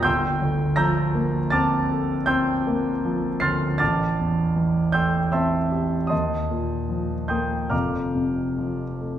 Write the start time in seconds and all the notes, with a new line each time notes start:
0.03 G1 G5 C6 E6 G6
0.42 D2
0.76 F3 A#5 E6 G6 A#6
1.15 A#3
1.50 C4 A5 D6 F6 A6
1.92 A4
2.26 C4 G5 C6 E6 G6
2.67 A#3
3.05 F3
3.40 D2 C6 F6 A6 C7
3.78 A1 A5 D6 F6 A6
4.20 E2
4.56 E3
4.92 A3 G5 C6 E6 G6
5.32 C4 E5 A5 C6 E6
5.72 G4
6.07 D#2 D#5 A5 C6 D#6
6.50 A#2
6.89 F3
7.28 A#3 G5 C6 D#6 G6
7.70 F1 F2 F5 A#5 D6 F6
8.15 C3
8.58 F3
9.01 A3